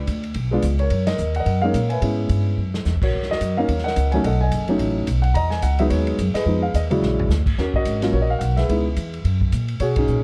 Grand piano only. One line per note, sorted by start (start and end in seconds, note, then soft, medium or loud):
0.00 0.21 D4 soft
0.00 0.21 F4 soft
0.51 0.62 G#3 medium
0.51 0.62 B3 medium
0.51 0.62 D4 medium
0.51 0.63 F4 medium
0.79 1.08 A#4 medium
0.79 1.05 C#5 medium
1.07 1.38 A#4 medium
1.07 1.33 D#5 medium
1.36 1.64 A#4 medium
1.36 1.90 D#5 medium
1.36 1.60 F#5 medium
1.62 1.73 G#3 medium
1.62 1.73 A#3 medium
1.62 1.74 C#4 medium
1.62 1.74 D#4 medium
1.62 2.01 A#4 medium
1.62 2.00 C#5 medium
1.62 1.91 F5 medium
1.89 2.43 B4 medium
1.89 2.43 E5 medium
1.89 2.41 G#5 medium
2.01 2.57 G#3 medium
2.01 2.58 B3 soft
2.01 2.58 C#4 soft
2.01 2.58 E4 medium
3.03 3.30 F#4 soft
3.03 3.30 A#4 soft
3.03 3.28 C#5 medium
3.31 3.82 F#4 medium
3.31 3.57 A#4 medium
3.31 3.59 D#5 medium
3.57 3.68 F#3 medium
3.57 3.68 A#3 medium
3.57 3.68 C#4 medium
3.57 3.68 D#4 medium
3.57 3.84 A#4 medium
3.57 4.09 C#5 medium
3.57 3.86 F5 medium
3.84 4.22 A#4 medium
3.84 4.22 D#5 medium
3.84 4.13 F#5 loud
4.12 4.23 F#3 medium
4.12 4.23 A3 medium
4.12 4.24 C#4 medium
4.12 4.24 D#4 medium
4.12 4.23 G#5 medium
4.24 4.77 A4 medium
4.24 4.41 D#5 medium
4.24 4.41 F#5 medium
4.41 4.93 D#5 medium
4.41 4.66 G#5 loud
4.69 5.05 F#3 medium
4.69 5.05 A3 medium
4.69 5.06 C#4 medium
4.69 5.06 D#4 medium
5.22 5.35 F#5 medium
5.34 5.87 D#5 medium
5.34 5.50 A#5 loud
5.50 5.61 G#5 medium
5.63 5.78 F#5 medium
5.79 6.16 F#3 medium
5.79 6.17 G#3 medium
5.79 6.17 B3 medium
5.79 6.17 D#4 medium
5.79 5.84 E5 medium
5.90 6.34 G#4 medium
5.90 6.16 C#5 medium
6.34 6.87 G#4 medium
6.34 6.87 B4 medium
6.34 6.60 D#5 medium
6.46 6.61 F3 medium
6.46 6.61 G#3 medium
6.46 6.61 B3 medium
6.46 6.62 D#4 medium
6.62 6.74 F5 medium
6.75 6.80 D#5 medium
6.90 7.28 C#3 medium
6.90 7.27 F#3 medium
6.90 7.27 G#3 medium
6.90 7.28 E4 medium
6.90 7.43 F#4 soft
6.90 7.43 G#4 medium
6.90 7.27 D5 medium
7.58 8.01 C#4 soft
7.58 7.75 F#4 soft
7.58 7.64 A#4 medium
7.76 8.13 F#4 medium
7.76 8.13 A#4 medium
7.76 8.11 D#5 medium
8.02 8.12 F#3 medium
8.02 8.12 A#3 medium
8.02 8.13 C#4 medium
8.02 8.13 F4 medium
8.13 8.65 F#4 medium
8.13 8.66 A#4 medium
8.13 8.17 C#5 medium
8.22 8.31 D#5 medium
8.30 8.41 F5 medium
8.39 8.55 F#5 medium
8.57 9.38 G#4 medium
8.57 9.21 B4 medium
8.57 9.37 E5 medium
8.69 8.84 G#3 medium
8.69 8.84 B3 medium
8.69 8.84 D#4 soft
8.69 8.85 E4 medium
9.80 10.23 F#4 medium
9.80 9.95 G#4 medium
9.80 9.85 C#5 medium
9.97 10.23 C#4 medium
9.97 10.23 D#4 medium
9.97 10.23 G#4 medium